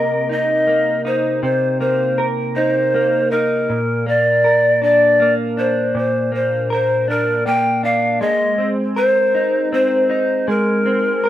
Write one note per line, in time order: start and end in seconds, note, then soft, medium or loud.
0.00 1.42 C3 medium
0.00 0.67 A#3 medium
0.00 2.18 A#4 medium
0.00 0.30 D#5 loud
0.29 1.04 D#4 medium
0.29 1.02 D#5 medium
0.67 1.80 A#3 medium
1.05 2.55 D#4 medium
1.05 1.40 C5 medium
1.43 3.69 C3 medium
1.43 1.78 C5 medium
1.81 2.94 A#3 medium
1.81 2.25 C5 medium
2.18 4.44 A#4 medium
2.55 3.31 D#4 medium
2.55 3.33 C5 medium
2.94 4.06 A#3 medium
3.31 3.76 D#4 medium
3.31 4.09 A#4 medium
3.70 5.93 A#2 medium
4.06 5.19 A#3 medium
4.06 4.82 D5 loud
4.44 6.70 A#4 medium
4.82 5.56 D4 medium
4.82 5.33 D5 loud
5.20 6.31 A#3 medium
5.57 7.07 D4 medium
5.57 5.96 C5 medium
5.95 8.21 A#2 medium
5.95 6.32 C5 medium
6.32 7.46 A#3 medium
6.32 6.69 C5 medium
6.70 8.61 A#4 medium
6.70 7.12 C5 loud
7.08 7.82 D4 medium
7.08 7.48 A#4 medium
7.46 8.58 A#3 medium
7.46 7.86 G5 loud
7.83 8.29 D4 medium
7.83 8.23 F5 medium
8.21 10.47 G#3 medium
8.21 8.70 D#5 medium
8.58 9.72 C4 medium
8.96 11.23 A#4 medium
8.96 9.69 C5 loud
9.35 10.08 D#4 medium
9.73 10.85 C4 medium
9.73 10.51 C5 loud
10.10 11.29 D#4 medium
10.48 11.29 G#3 medium
10.48 11.29 A#4 loud
10.86 11.29 C4 medium
11.24 11.29 A#4 medium